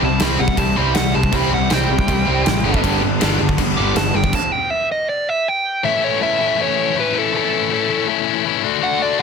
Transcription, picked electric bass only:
0.02 0.18 C2 medium
0.21 0.37 C2 medium
0.40 0.56 C2 medium
0.57 0.74 C2 medium
0.78 0.94 C2 medium
0.97 1.13 C2 medium
1.15 1.31 C2 medium
1.33 1.49 C2 loud
1.53 1.69 C2 medium
1.70 1.87 C2 medium
1.89 2.06 C2 medium
2.09 2.25 C2 loud
2.27 2.43 C2 medium
2.47 2.63 A1 medium
2.65 2.81 G1 medium
2.84 3.00 G1 medium
3.03 3.19 G1 medium
3.22 3.38 G1 medium
3.41 3.57 G1 medium
3.58 3.75 G1 loud
3.79 3.94 G1 medium
3.95 4.12 G1 loud
4.15 4.31 G1 medium

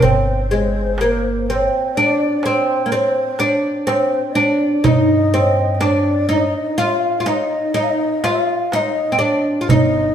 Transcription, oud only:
0.02 0.51 C4 medium
0.51 1.00 G#3 medium
1.01 1.49 A#3 medium
1.50 1.98 C4 medium
1.97 2.45 D4 medium
2.46 2.87 C4 medium
2.86 2.92 A#3 medium
2.92 3.42 C4 medium
3.40 3.90 D4 medium
3.87 4.33 C4 medium
4.35 4.84 D4 medium
4.84 5.34 D#4 medium
5.34 5.83 C4 medium
5.81 6.28 D4 medium
6.29 6.77 D#4 medium
6.78 7.19 F4 loud
7.20 7.26 F4 medium
7.26 7.73 D#4 medium
7.74 8.23 D#4 medium
8.24 8.73 F4 medium
8.73 9.12 D#4 medium
9.12 9.18 C4 medium
9.19 9.61 D4 medium
9.61 9.69 F4 medium
9.70 10.15 D#4 medium

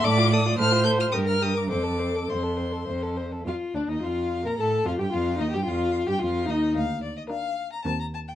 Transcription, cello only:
0.03 0.51 A2 loud
0.59 1.07 A2 medium
1.14 1.65 G2 medium
1.71 2.23 F2 medium
2.31 2.82 F2 medium
2.89 3.40 F2 medium
3.47 3.55 F2 medium
3.74 3.80 D2 soft
3.88 4.02 D#2 soft
4.03 4.46 F2 medium
4.44 4.58 A#2 medium
4.59 4.85 A2 medium
4.86 4.99 F2 medium
5.00 5.05 G2 medium
5.14 5.42 F2 medium
5.40 5.56 D#2 medium
5.55 5.68 G2 medium
5.68 6.07 F2 medium
6.08 6.13 G2 medium
6.21 6.48 F2 medium
6.47 6.74 D#2 medium
6.75 7.18 D2 medium
7.85 8.30 D#2 medium

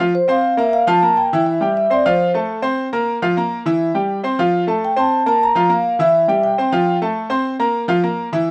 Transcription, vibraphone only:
0.15 0.21 C5 medium
0.30 0.60 F5 medium
0.59 0.74 E5 medium
0.73 0.80 F5 loud
0.88 1.18 A5 loud
1.17 1.44 G5 loud
1.46 1.76 E5 medium
1.77 1.91 E5 medium
1.93 2.05 D5 medium
2.06 2.33 C5 medium
4.85 4.97 G5 loud
4.99 5.27 A5 medium
5.28 5.42 A5 loud
5.43 5.69 A#5 loud
5.72 5.98 F5 medium
6.01 6.27 E5 loud
6.30 6.43 E5 medium
6.43 6.98 G5 medium

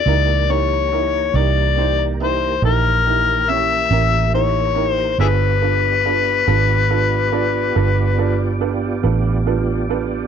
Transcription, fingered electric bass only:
0.06 1.30 C#2 medium
1.34 2.58 C2 medium
2.62 3.87 A#1 medium
3.91 5.15 A1 medium
5.18 6.43 G1 medium
6.47 7.72 G#1 medium
7.76 9.00 G1 medium
9.04 10.27 A1 medium

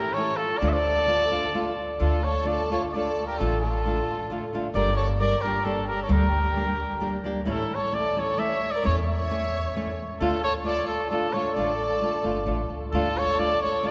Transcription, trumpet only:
0.00 0.14 A#4 medium
0.13 0.38 C#5 medium
0.36 0.59 A4 medium
0.58 0.70 D5 medium
0.69 0.74 E5 medium
0.73 1.77 D5 loud
2.00 2.25 A4 medium
2.24 2.48 C#5 medium
2.47 2.71 D5 medium
2.72 2.82 C#5 medium
2.93 3.25 D5 medium
3.27 3.39 A#4 medium
3.38 3.60 A4 medium
3.61 4.48 A4 medium
4.74 4.95 D5 medium
4.96 5.06 C#5 medium
5.19 5.43 D5 medium
5.42 5.66 A#4 medium
5.64 5.87 A4 medium
5.88 6.02 A#4 medium
6.03 6.13 C#5 medium
6.12 7.27 A#4 medium
7.50 7.76 A4 medium
7.75 7.96 C#5 medium
7.94 8.21 D5 medium
8.19 8.40 C#5 medium
8.39 8.73 E5 medium
8.71 8.84 D5 medium
8.85 8.96 C#5 medium
9.07 9.94 E5 medium
10.20 10.42 A4 medium
10.44 10.54 C#5 loud
10.65 10.87 D5 medium
10.88 11.09 A4 medium
11.11 11.34 A4 medium
11.33 11.56 C#5 medium
11.54 12.69 D5 medium
12.92 13.19 A4 medium
13.18 13.41 C#5 loud
13.39 13.61 D5 loud
13.62 13.89 C#5 medium
13.87 13.91 D5 loud

